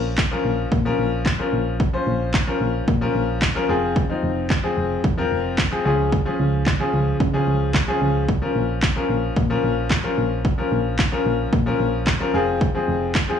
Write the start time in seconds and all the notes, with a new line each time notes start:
Already playing: A#1 F3 C#4 A#4
0.18 kick, clap
0.31 F3 C#4 A#4
0.45 A#1
0.72 A#2, kick
0.85 F3 C#4 A#4
0.99 A#1
1.26 kick, clap
1.39 F3 C#4 A#4
1.53 A#1
1.80 kick
1.93 F3 C#4 C5
2.07 A#1
2.34 kick, clap
2.47 F3 C#4 A#4
2.61 A#1
2.88 A#2, kick
3.01 F3 C#4 A#4
3.15 A#1
3.42 kick, clap
3.55 F3 C#4 A#4
3.69 F1 F3 C4 G#4
3.96 kick
4.10 F3 C4 D#4
4.23 F1
4.50 kick, clap
4.64 F3 C4 G#4
4.77 F1
5.04 F2, kick
5.18 F3 C4 A#4
5.31 F1
5.58 kick, clap
5.72 F3 C4 G#4
5.85 C#2 F3 C#4 G#4
6.12 kick
6.25 F3 C#4 G#4
6.40 C#2
6.66 kick, clap
6.80 F3 C#4 G#4
6.94 C#2
7.20 C#3, kick
7.34 F3 C#4 G#4
7.48 C#2
7.74 kick, clap
7.88 F3 C#4 G#4
8.02 C#2
8.29 kick
8.42 F3 C#4 A#4
8.55 A#1
8.83 kick, clap
8.96 F3 C#4 A#4
9.10 A#1
9.36 A#2, kick
9.50 F3 C#4 A#4
9.64 A#1
9.90 kick, clap
10.04 F3 C#4 A#4
10.18 A#1
10.45 kick
10.58 F3 C#4 A#4
10.72 A#1
10.99 kick, clap
11.12 F3 C#4 A#4
11.26 A#1
11.53 A#2, kick
11.66 F3 C#4 A#4
11.80 A#1
12.07 kick, clap
12.20 F3 C#4 A#4
12.34 F1 F3 C4 G#4
12.61 kick
12.75 F3 C4 G#4
12.88 F1
13.15 kick, clap
13.29 F3 C4 G#4